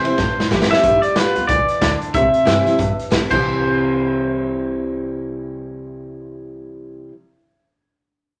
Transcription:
Already playing: steel-string acoustic guitar C3, clean electric guitar C5
0.04 steel-string acoustic guitar C4 E4, muted upright bass stroke, ride
0.18 steel-string acoustic guitar G2, upright bass A2, kick, snare
0.38 muted upright bass stroke, snare
0.51 upright bass A2, steel-string acoustic guitar E3 G3 C4 E4, kick, snare
0.62 snare
0.70 clean electric guitar E5, muted upright bass stroke, snare
0.83 upright bass G1, steel-string acoustic guitar G3, kick, closed hi-hat
1.02 clean electric guitar D5, closed hi-hat
1.16 upright bass G1, steel-string acoustic guitar G3 B3 F4, clean electric guitar B4, snare, closed hi-hat
1.36 upright bass D2, steel-string acoustic guitar B3 F4, closed hi-hat
1.47 upright bass C2, steel-string acoustic guitar E3, clean electric guitar D5, kick, closed hi-hat
1.69 closed hi-hat
1.81 upright bass D2, steel-string acoustic guitar D3, kick, snare, closed hi-hat
2.01 muted upright bass stroke, closed hi-hat
2.14 upright bass C2, steel-string acoustic guitar C3, clean electric guitar E5, kick, closed hi-hat
2.34 closed hi-hat
2.45 upright bass G2, steel-string acoustic guitar E3 G3 C4 E4, snare, closed hi-hat
2.66 steel-string acoustic guitar C4 E4, snare, closed hi-hat
2.79 steel-string acoustic guitar G2, upright bass G2, kick, closed hi-hat
2.98 muted upright bass stroke, closed hi-hat
3.10 upright bass A2, steel-string acoustic guitar E3 G3 C4 E4, kick, snare, closed hi-hat
3.30 upright bass C2, steel-string acoustic guitar C3 E3 G3 C4 E4, clean electric guitar C5, kick, crash

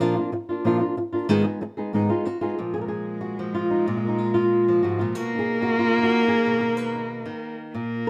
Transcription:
0.00 nylon-string guitar A#2 F3 A#3 D4 F4
0.16 nylon-string guitar A#3 D4 F4
0.32 muted nylon-string guitar stroke
0.49 nylon-string guitar A#3 D4 F4
0.64 nylon-string guitar A#2 F3 A#3 D4 F4
0.80 nylon-string guitar A#3 D4 F4
0.97 muted nylon-string guitar stroke
1.13 nylon-string guitar A#3 D4 F4
1.28 nylon-string guitar G#2 D#3 G#3 B3 D#4 G#4
1.45 nylon-string guitar G#3 B3 D#4 G#4
1.61 muted nylon-string guitar stroke
1.77 nylon-string guitar G#3 B3 D#4 G#4
1.93 nylon-string guitar G#2 D#3 G#3 B3 D#4 G#4
2.09 nylon-string guitar G#3 B3 D#4 F4 G#4
2.25 nylon-string guitar F#4, muted nylon-string guitar stroke
2.41 nylon-string guitar G#3 B3 D#4 F4 G#4
2.59 nylon-string guitar A#2 F3 A#3, cello G#3
2.74 nylon-string guitar G#4
2.81 nylon-string guitar A#4
2.88 nylon-string guitar G#4
3.21 nylon-string guitar F#4
3.39 nylon-string guitar F3
3.54 nylon-string guitar F4
3.71 nylon-string guitar D#4
3.86 nylon-string guitar A#2 F4
3.97 nylon-string guitar F4
4.04 nylon-string guitar A#3
4.08 nylon-string guitar D#4
4.18 nylon-string guitar F4
4.34 nylon-string guitar F4
4.68 nylon-string guitar F3
4.83 nylon-string guitar G#2 F#4
4.99 nylon-string guitar A#2 F4
5.15 nylon-string guitar B2 F#4, cello A#3
5.35 nylon-string guitar D#4
5.39 nylon-string guitar G#4
5.62 nylon-string guitar F#4
5.79 nylon-string guitar F4
5.98 nylon-string guitar D#3
6.03 nylon-string guitar F#4
6.28 nylon-string guitar G#4
6.46 nylon-string guitar B2
6.61 nylon-string guitar A#4
6.77 nylon-string guitar B4
6.95 nylon-string guitar D#4
7.26 nylon-string guitar D#3
7.74 nylon-string guitar A#2, cello A#3

